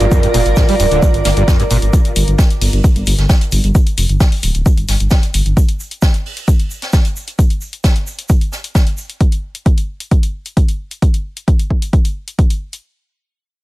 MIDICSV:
0, 0, Header, 1, 6, 480
1, 0, Start_track
1, 0, Key_signature, -2, "minor"
1, 0, Tempo, 454545
1, 120, Time_signature, 4, 2, 24, 8
1, 14394, End_track
2, 0, Start_track
2, 0, Title_t, "Ambient pad"
2, 0, Program_c, 0, 92
2, 0, Note_on_c, 0, 65, 86
2, 0, Note_on_c, 0, 70, 96
2, 0, Note_on_c, 0, 74, 76
2, 2041, Note_off_c, 0, 65, 0
2, 2041, Note_off_c, 0, 70, 0
2, 2041, Note_off_c, 0, 74, 0
2, 14394, End_track
3, 0, Start_track
3, 0, Title_t, "Acid bass"
3, 0, Program_c, 1, 38
3, 5, Note_on_c, 1, 43, 80
3, 69, Note_off_c, 1, 43, 0
3, 122, Note_on_c, 1, 41, 85
3, 223, Note_off_c, 1, 41, 0
3, 244, Note_on_c, 1, 43, 104
3, 283, Note_off_c, 1, 43, 0
3, 361, Note_on_c, 1, 46, 77
3, 428, Note_off_c, 1, 46, 0
3, 601, Note_on_c, 1, 44, 84
3, 668, Note_off_c, 1, 44, 0
3, 724, Note_on_c, 1, 55, 77
3, 788, Note_off_c, 1, 55, 0
3, 841, Note_on_c, 1, 43, 74
3, 908, Note_off_c, 1, 43, 0
3, 964, Note_on_c, 1, 50, 77
3, 1060, Note_off_c, 1, 50, 0
3, 1081, Note_on_c, 1, 43, 87
3, 1122, Note_off_c, 1, 43, 0
3, 1320, Note_on_c, 1, 58, 75
3, 1361, Note_off_c, 1, 58, 0
3, 1444, Note_on_c, 1, 43, 76
3, 1508, Note_off_c, 1, 43, 0
3, 1562, Note_on_c, 1, 41, 85
3, 1663, Note_off_c, 1, 41, 0
3, 1685, Note_on_c, 1, 43, 102
3, 1723, Note_off_c, 1, 43, 0
3, 1801, Note_on_c, 1, 46, 77
3, 1868, Note_off_c, 1, 46, 0
3, 14394, End_track
4, 0, Start_track
4, 0, Title_t, "Detuned saw bass"
4, 0, Program_c, 2, 39
4, 4, Note_on_c, 2, 31, 82
4, 76, Note_off_c, 2, 31, 0
4, 361, Note_on_c, 2, 29, 98
4, 437, Note_off_c, 2, 29, 0
4, 484, Note_on_c, 2, 31, 83
4, 556, Note_off_c, 2, 31, 0
4, 841, Note_on_c, 2, 26, 92
4, 916, Note_off_c, 2, 26, 0
4, 965, Note_on_c, 2, 26, 82
4, 1036, Note_off_c, 2, 26, 0
4, 1205, Note_on_c, 2, 31, 77
4, 1276, Note_off_c, 2, 31, 0
4, 1322, Note_on_c, 2, 31, 96
4, 1397, Note_off_c, 2, 31, 0
4, 1446, Note_on_c, 2, 31, 81
4, 1517, Note_off_c, 2, 31, 0
4, 1802, Note_on_c, 2, 31, 94
4, 1877, Note_off_c, 2, 31, 0
4, 1925, Note_on_c, 2, 31, 82
4, 1996, Note_off_c, 2, 31, 0
4, 2280, Note_on_c, 2, 31, 98
4, 2356, Note_off_c, 2, 31, 0
4, 2404, Note_on_c, 2, 31, 83
4, 2475, Note_off_c, 2, 31, 0
4, 2760, Note_on_c, 2, 31, 92
4, 2836, Note_off_c, 2, 31, 0
4, 2884, Note_on_c, 2, 31, 83
4, 2956, Note_off_c, 2, 31, 0
4, 3124, Note_on_c, 2, 31, 74
4, 3196, Note_off_c, 2, 31, 0
4, 3240, Note_on_c, 2, 31, 95
4, 3316, Note_off_c, 2, 31, 0
4, 3363, Note_on_c, 2, 31, 82
4, 3435, Note_off_c, 2, 31, 0
4, 3720, Note_on_c, 2, 31, 98
4, 3796, Note_off_c, 2, 31, 0
4, 3844, Note_on_c, 2, 31, 83
4, 3916, Note_off_c, 2, 31, 0
4, 4201, Note_on_c, 2, 29, 96
4, 4276, Note_off_c, 2, 29, 0
4, 4325, Note_on_c, 2, 31, 83
4, 4396, Note_off_c, 2, 31, 0
4, 4681, Note_on_c, 2, 26, 95
4, 4756, Note_off_c, 2, 26, 0
4, 4804, Note_on_c, 2, 26, 81
4, 4876, Note_off_c, 2, 26, 0
4, 5043, Note_on_c, 2, 31, 77
4, 5115, Note_off_c, 2, 31, 0
4, 5160, Note_on_c, 2, 31, 96
4, 5236, Note_off_c, 2, 31, 0
4, 5284, Note_on_c, 2, 31, 80
4, 5356, Note_off_c, 2, 31, 0
4, 5641, Note_on_c, 2, 31, 95
4, 5716, Note_off_c, 2, 31, 0
4, 5763, Note_on_c, 2, 31, 82
4, 5835, Note_off_c, 2, 31, 0
4, 14394, End_track
5, 0, Start_track
5, 0, Title_t, "Downlifter"
5, 0, Program_c, 3, 103
5, 0, Note_on_c, 3, 60, 73
5, 2040, Note_off_c, 3, 60, 0
5, 14394, End_track
6, 0, Start_track
6, 0, Title_t, "Drums"
6, 4, Note_on_c, 9, 42, 66
6, 110, Note_off_c, 9, 42, 0
6, 121, Note_on_c, 9, 36, 122
6, 121, Note_on_c, 9, 82, 91
6, 122, Note_on_c, 9, 42, 70
6, 226, Note_off_c, 9, 36, 0
6, 227, Note_off_c, 9, 42, 0
6, 227, Note_off_c, 9, 82, 0
6, 244, Note_on_c, 9, 42, 73
6, 350, Note_off_c, 9, 42, 0
6, 362, Note_on_c, 9, 46, 106
6, 363, Note_on_c, 9, 82, 74
6, 467, Note_off_c, 9, 46, 0
6, 469, Note_off_c, 9, 82, 0
6, 483, Note_on_c, 9, 42, 70
6, 589, Note_off_c, 9, 42, 0
6, 595, Note_on_c, 9, 82, 89
6, 599, Note_on_c, 9, 38, 111
6, 601, Note_on_c, 9, 36, 126
6, 601, Note_on_c, 9, 42, 68
6, 701, Note_off_c, 9, 82, 0
6, 704, Note_off_c, 9, 38, 0
6, 706, Note_off_c, 9, 36, 0
6, 707, Note_off_c, 9, 42, 0
6, 725, Note_on_c, 9, 46, 63
6, 831, Note_off_c, 9, 46, 0
6, 840, Note_on_c, 9, 82, 71
6, 842, Note_on_c, 9, 46, 106
6, 946, Note_off_c, 9, 82, 0
6, 948, Note_off_c, 9, 46, 0
6, 966, Note_on_c, 9, 42, 71
6, 1071, Note_off_c, 9, 42, 0
6, 1081, Note_on_c, 9, 36, 125
6, 1082, Note_on_c, 9, 42, 67
6, 1083, Note_on_c, 9, 82, 83
6, 1187, Note_off_c, 9, 36, 0
6, 1188, Note_off_c, 9, 42, 0
6, 1188, Note_off_c, 9, 82, 0
6, 1205, Note_on_c, 9, 42, 68
6, 1311, Note_off_c, 9, 42, 0
6, 1320, Note_on_c, 9, 38, 58
6, 1320, Note_on_c, 9, 82, 63
6, 1322, Note_on_c, 9, 46, 107
6, 1425, Note_off_c, 9, 38, 0
6, 1425, Note_off_c, 9, 82, 0
6, 1427, Note_off_c, 9, 46, 0
6, 1445, Note_on_c, 9, 42, 69
6, 1551, Note_off_c, 9, 42, 0
6, 1559, Note_on_c, 9, 38, 113
6, 1561, Note_on_c, 9, 36, 123
6, 1562, Note_on_c, 9, 42, 70
6, 1567, Note_on_c, 9, 82, 87
6, 1664, Note_off_c, 9, 38, 0
6, 1666, Note_off_c, 9, 36, 0
6, 1667, Note_off_c, 9, 42, 0
6, 1672, Note_off_c, 9, 82, 0
6, 1686, Note_on_c, 9, 42, 70
6, 1792, Note_off_c, 9, 42, 0
6, 1802, Note_on_c, 9, 46, 107
6, 1803, Note_on_c, 9, 82, 74
6, 1907, Note_off_c, 9, 46, 0
6, 1909, Note_off_c, 9, 82, 0
6, 1925, Note_on_c, 9, 42, 66
6, 2031, Note_off_c, 9, 42, 0
6, 2041, Note_on_c, 9, 36, 121
6, 2041, Note_on_c, 9, 82, 84
6, 2042, Note_on_c, 9, 42, 67
6, 2146, Note_off_c, 9, 36, 0
6, 2147, Note_off_c, 9, 82, 0
6, 2148, Note_off_c, 9, 42, 0
6, 2165, Note_on_c, 9, 42, 68
6, 2271, Note_off_c, 9, 42, 0
6, 2281, Note_on_c, 9, 46, 112
6, 2282, Note_on_c, 9, 82, 73
6, 2387, Note_off_c, 9, 46, 0
6, 2387, Note_off_c, 9, 82, 0
6, 2405, Note_on_c, 9, 42, 70
6, 2511, Note_off_c, 9, 42, 0
6, 2516, Note_on_c, 9, 38, 113
6, 2521, Note_on_c, 9, 36, 123
6, 2522, Note_on_c, 9, 42, 66
6, 2526, Note_on_c, 9, 82, 84
6, 2622, Note_off_c, 9, 38, 0
6, 2626, Note_off_c, 9, 36, 0
6, 2627, Note_off_c, 9, 42, 0
6, 2632, Note_off_c, 9, 82, 0
6, 2645, Note_on_c, 9, 42, 66
6, 2751, Note_off_c, 9, 42, 0
6, 2760, Note_on_c, 9, 46, 84
6, 2761, Note_off_c, 9, 46, 0
6, 2761, Note_on_c, 9, 46, 107
6, 2867, Note_off_c, 9, 46, 0
6, 2885, Note_on_c, 9, 42, 67
6, 2991, Note_off_c, 9, 42, 0
6, 3000, Note_on_c, 9, 36, 127
6, 3001, Note_on_c, 9, 82, 86
6, 3002, Note_on_c, 9, 42, 67
6, 3106, Note_off_c, 9, 36, 0
6, 3107, Note_off_c, 9, 82, 0
6, 3108, Note_off_c, 9, 42, 0
6, 3125, Note_on_c, 9, 42, 69
6, 3231, Note_off_c, 9, 42, 0
6, 3235, Note_on_c, 9, 82, 61
6, 3242, Note_on_c, 9, 46, 111
6, 3341, Note_off_c, 9, 82, 0
6, 3348, Note_off_c, 9, 46, 0
6, 3364, Note_on_c, 9, 38, 49
6, 3364, Note_on_c, 9, 42, 64
6, 3469, Note_off_c, 9, 38, 0
6, 3470, Note_off_c, 9, 42, 0
6, 3477, Note_on_c, 9, 38, 115
6, 3479, Note_on_c, 9, 82, 82
6, 3480, Note_on_c, 9, 36, 123
6, 3481, Note_on_c, 9, 42, 68
6, 3583, Note_off_c, 9, 38, 0
6, 3585, Note_off_c, 9, 82, 0
6, 3586, Note_off_c, 9, 36, 0
6, 3586, Note_off_c, 9, 42, 0
6, 3603, Note_on_c, 9, 42, 42
6, 3604, Note_off_c, 9, 42, 0
6, 3604, Note_on_c, 9, 42, 67
6, 3710, Note_off_c, 9, 42, 0
6, 3713, Note_on_c, 9, 82, 70
6, 3720, Note_on_c, 9, 46, 109
6, 3819, Note_off_c, 9, 82, 0
6, 3825, Note_off_c, 9, 46, 0
6, 3843, Note_on_c, 9, 42, 64
6, 3849, Note_off_c, 9, 42, 0
6, 3849, Note_on_c, 9, 42, 43
6, 3955, Note_off_c, 9, 42, 0
6, 3960, Note_on_c, 9, 36, 121
6, 3960, Note_on_c, 9, 42, 63
6, 3961, Note_on_c, 9, 82, 86
6, 4065, Note_off_c, 9, 36, 0
6, 4066, Note_off_c, 9, 42, 0
6, 4067, Note_off_c, 9, 82, 0
6, 4083, Note_on_c, 9, 42, 64
6, 4188, Note_off_c, 9, 42, 0
6, 4199, Note_on_c, 9, 46, 108
6, 4203, Note_on_c, 9, 82, 72
6, 4305, Note_off_c, 9, 46, 0
6, 4308, Note_off_c, 9, 82, 0
6, 4323, Note_on_c, 9, 42, 64
6, 4428, Note_off_c, 9, 42, 0
6, 4438, Note_on_c, 9, 38, 107
6, 4440, Note_on_c, 9, 36, 121
6, 4440, Note_on_c, 9, 42, 64
6, 4440, Note_on_c, 9, 82, 89
6, 4544, Note_off_c, 9, 38, 0
6, 4545, Note_off_c, 9, 36, 0
6, 4545, Note_off_c, 9, 42, 0
6, 4546, Note_off_c, 9, 82, 0
6, 4563, Note_on_c, 9, 46, 61
6, 4668, Note_off_c, 9, 46, 0
6, 4678, Note_on_c, 9, 82, 67
6, 4679, Note_on_c, 9, 46, 107
6, 4784, Note_off_c, 9, 46, 0
6, 4784, Note_off_c, 9, 82, 0
6, 4802, Note_on_c, 9, 42, 63
6, 4908, Note_off_c, 9, 42, 0
6, 4919, Note_on_c, 9, 42, 61
6, 4920, Note_on_c, 9, 36, 123
6, 4921, Note_on_c, 9, 82, 83
6, 5025, Note_off_c, 9, 36, 0
6, 5025, Note_off_c, 9, 42, 0
6, 5027, Note_off_c, 9, 82, 0
6, 5042, Note_on_c, 9, 42, 64
6, 5148, Note_off_c, 9, 42, 0
6, 5157, Note_on_c, 9, 82, 64
6, 5159, Note_on_c, 9, 46, 110
6, 5166, Note_on_c, 9, 38, 55
6, 5263, Note_off_c, 9, 82, 0
6, 5264, Note_off_c, 9, 46, 0
6, 5271, Note_off_c, 9, 38, 0
6, 5283, Note_on_c, 9, 42, 63
6, 5389, Note_off_c, 9, 42, 0
6, 5391, Note_on_c, 9, 38, 111
6, 5391, Note_on_c, 9, 82, 78
6, 5400, Note_on_c, 9, 36, 118
6, 5400, Note_on_c, 9, 42, 67
6, 5496, Note_off_c, 9, 38, 0
6, 5496, Note_off_c, 9, 82, 0
6, 5506, Note_off_c, 9, 36, 0
6, 5506, Note_off_c, 9, 42, 0
6, 5515, Note_on_c, 9, 42, 43
6, 5523, Note_off_c, 9, 42, 0
6, 5523, Note_on_c, 9, 42, 65
6, 5629, Note_off_c, 9, 42, 0
6, 5640, Note_on_c, 9, 46, 108
6, 5641, Note_on_c, 9, 82, 67
6, 5746, Note_off_c, 9, 46, 0
6, 5747, Note_off_c, 9, 82, 0
6, 5764, Note_on_c, 9, 42, 63
6, 5870, Note_off_c, 9, 42, 0
6, 5880, Note_on_c, 9, 36, 113
6, 5881, Note_on_c, 9, 42, 62
6, 5888, Note_on_c, 9, 82, 90
6, 5986, Note_off_c, 9, 36, 0
6, 5987, Note_off_c, 9, 42, 0
6, 5994, Note_off_c, 9, 82, 0
6, 6004, Note_on_c, 9, 42, 65
6, 6109, Note_off_c, 9, 42, 0
6, 6123, Note_on_c, 9, 82, 69
6, 6228, Note_off_c, 9, 82, 0
6, 6244, Note_on_c, 9, 42, 61
6, 6350, Note_off_c, 9, 42, 0
6, 6358, Note_on_c, 9, 82, 89
6, 6360, Note_on_c, 9, 38, 118
6, 6360, Note_on_c, 9, 42, 62
6, 6361, Note_on_c, 9, 36, 115
6, 6463, Note_off_c, 9, 82, 0
6, 6466, Note_off_c, 9, 36, 0
6, 6466, Note_off_c, 9, 38, 0
6, 6466, Note_off_c, 9, 42, 0
6, 6485, Note_on_c, 9, 42, 61
6, 6590, Note_off_c, 9, 42, 0
6, 6610, Note_on_c, 9, 46, 82
6, 6715, Note_off_c, 9, 46, 0
6, 6725, Note_on_c, 9, 42, 61
6, 6831, Note_off_c, 9, 42, 0
6, 6841, Note_on_c, 9, 36, 117
6, 6842, Note_on_c, 9, 42, 60
6, 6844, Note_on_c, 9, 82, 92
6, 6947, Note_off_c, 9, 36, 0
6, 6947, Note_off_c, 9, 42, 0
6, 6950, Note_off_c, 9, 82, 0
6, 6964, Note_on_c, 9, 42, 61
6, 7070, Note_off_c, 9, 42, 0
6, 7080, Note_on_c, 9, 82, 62
6, 7185, Note_off_c, 9, 82, 0
6, 7204, Note_on_c, 9, 42, 61
6, 7206, Note_on_c, 9, 38, 54
6, 7310, Note_off_c, 9, 42, 0
6, 7311, Note_off_c, 9, 38, 0
6, 7315, Note_on_c, 9, 82, 80
6, 7321, Note_on_c, 9, 36, 116
6, 7321, Note_on_c, 9, 42, 64
6, 7326, Note_on_c, 9, 38, 107
6, 7420, Note_off_c, 9, 82, 0
6, 7427, Note_off_c, 9, 36, 0
6, 7427, Note_off_c, 9, 42, 0
6, 7432, Note_off_c, 9, 38, 0
6, 7444, Note_on_c, 9, 42, 64
6, 7446, Note_off_c, 9, 42, 0
6, 7446, Note_on_c, 9, 42, 43
6, 7552, Note_off_c, 9, 42, 0
6, 7564, Note_on_c, 9, 82, 67
6, 7669, Note_off_c, 9, 82, 0
6, 7679, Note_on_c, 9, 42, 44
6, 7684, Note_off_c, 9, 42, 0
6, 7684, Note_on_c, 9, 42, 61
6, 7790, Note_off_c, 9, 42, 0
6, 7801, Note_on_c, 9, 36, 111
6, 7801, Note_on_c, 9, 42, 64
6, 7805, Note_on_c, 9, 82, 85
6, 7907, Note_off_c, 9, 36, 0
6, 7907, Note_off_c, 9, 42, 0
6, 7911, Note_off_c, 9, 82, 0
6, 7923, Note_on_c, 9, 42, 63
6, 8029, Note_off_c, 9, 42, 0
6, 8038, Note_on_c, 9, 82, 62
6, 8143, Note_off_c, 9, 82, 0
6, 8163, Note_on_c, 9, 42, 62
6, 8268, Note_off_c, 9, 42, 0
6, 8278, Note_on_c, 9, 38, 127
6, 8280, Note_on_c, 9, 42, 62
6, 8281, Note_on_c, 9, 36, 107
6, 8282, Note_on_c, 9, 82, 79
6, 8383, Note_off_c, 9, 38, 0
6, 8386, Note_off_c, 9, 42, 0
6, 8387, Note_off_c, 9, 36, 0
6, 8387, Note_off_c, 9, 82, 0
6, 8403, Note_on_c, 9, 42, 62
6, 8509, Note_off_c, 9, 42, 0
6, 8521, Note_on_c, 9, 82, 66
6, 8627, Note_off_c, 9, 82, 0
6, 8644, Note_on_c, 9, 42, 62
6, 8750, Note_off_c, 9, 42, 0
6, 8753, Note_on_c, 9, 82, 78
6, 8761, Note_on_c, 9, 36, 112
6, 8761, Note_on_c, 9, 42, 59
6, 8859, Note_off_c, 9, 82, 0
6, 8867, Note_off_c, 9, 36, 0
6, 8867, Note_off_c, 9, 42, 0
6, 8884, Note_on_c, 9, 42, 61
6, 8990, Note_off_c, 9, 42, 0
6, 8999, Note_on_c, 9, 38, 53
6, 9003, Note_on_c, 9, 82, 66
6, 9105, Note_off_c, 9, 38, 0
6, 9109, Note_off_c, 9, 82, 0
6, 9126, Note_on_c, 9, 42, 62
6, 9231, Note_off_c, 9, 42, 0
6, 9239, Note_on_c, 9, 38, 99
6, 9241, Note_on_c, 9, 36, 113
6, 9241, Note_on_c, 9, 42, 62
6, 9245, Note_on_c, 9, 82, 90
6, 9344, Note_off_c, 9, 38, 0
6, 9347, Note_off_c, 9, 36, 0
6, 9347, Note_off_c, 9, 42, 0
6, 9351, Note_off_c, 9, 82, 0
6, 9363, Note_on_c, 9, 42, 62
6, 9366, Note_off_c, 9, 42, 0
6, 9366, Note_on_c, 9, 42, 39
6, 9471, Note_off_c, 9, 42, 0
6, 9476, Note_on_c, 9, 82, 64
6, 9582, Note_off_c, 9, 82, 0
6, 9605, Note_on_c, 9, 42, 59
6, 9710, Note_off_c, 9, 42, 0
6, 9721, Note_on_c, 9, 36, 108
6, 9721, Note_on_c, 9, 42, 63
6, 9826, Note_off_c, 9, 36, 0
6, 9827, Note_off_c, 9, 42, 0
6, 9844, Note_on_c, 9, 42, 63
6, 9949, Note_off_c, 9, 42, 0
6, 10084, Note_on_c, 9, 42, 66
6, 10189, Note_off_c, 9, 42, 0
6, 10200, Note_on_c, 9, 36, 110
6, 10201, Note_on_c, 9, 42, 62
6, 10306, Note_off_c, 9, 36, 0
6, 10306, Note_off_c, 9, 42, 0
6, 10324, Note_on_c, 9, 42, 62
6, 10429, Note_off_c, 9, 42, 0
6, 10564, Note_on_c, 9, 42, 65
6, 10669, Note_off_c, 9, 42, 0
6, 10680, Note_on_c, 9, 36, 111
6, 10680, Note_on_c, 9, 42, 62
6, 10786, Note_off_c, 9, 36, 0
6, 10786, Note_off_c, 9, 42, 0
6, 10804, Note_on_c, 9, 42, 65
6, 10909, Note_off_c, 9, 42, 0
6, 11043, Note_on_c, 9, 42, 61
6, 11149, Note_off_c, 9, 42, 0
6, 11160, Note_on_c, 9, 36, 108
6, 11161, Note_on_c, 9, 42, 64
6, 11266, Note_off_c, 9, 36, 0
6, 11267, Note_off_c, 9, 42, 0
6, 11283, Note_on_c, 9, 42, 64
6, 11389, Note_off_c, 9, 42, 0
6, 11524, Note_on_c, 9, 42, 61
6, 11630, Note_off_c, 9, 42, 0
6, 11640, Note_on_c, 9, 36, 113
6, 11642, Note_on_c, 9, 42, 67
6, 11746, Note_off_c, 9, 36, 0
6, 11747, Note_off_c, 9, 42, 0
6, 11764, Note_on_c, 9, 42, 66
6, 11870, Note_off_c, 9, 42, 0
6, 12005, Note_on_c, 9, 42, 65
6, 12110, Note_off_c, 9, 42, 0
6, 12120, Note_on_c, 9, 36, 111
6, 12121, Note_on_c, 9, 42, 65
6, 12226, Note_off_c, 9, 36, 0
6, 12227, Note_off_c, 9, 42, 0
6, 12244, Note_on_c, 9, 42, 64
6, 12349, Note_off_c, 9, 42, 0
6, 12360, Note_on_c, 9, 36, 56
6, 12466, Note_off_c, 9, 36, 0
6, 12484, Note_on_c, 9, 42, 66
6, 12590, Note_off_c, 9, 42, 0
6, 12600, Note_on_c, 9, 36, 113
6, 12601, Note_on_c, 9, 42, 62
6, 12706, Note_off_c, 9, 36, 0
6, 12706, Note_off_c, 9, 42, 0
6, 12724, Note_on_c, 9, 42, 63
6, 12830, Note_off_c, 9, 42, 0
6, 12964, Note_on_c, 9, 42, 64
6, 13070, Note_off_c, 9, 42, 0
6, 13080, Note_on_c, 9, 36, 111
6, 13081, Note_on_c, 9, 42, 66
6, 13186, Note_off_c, 9, 36, 0
6, 13186, Note_off_c, 9, 42, 0
6, 13204, Note_on_c, 9, 42, 64
6, 13309, Note_off_c, 9, 42, 0
6, 13444, Note_on_c, 9, 42, 64
6, 13549, Note_off_c, 9, 42, 0
6, 14394, End_track
0, 0, End_of_file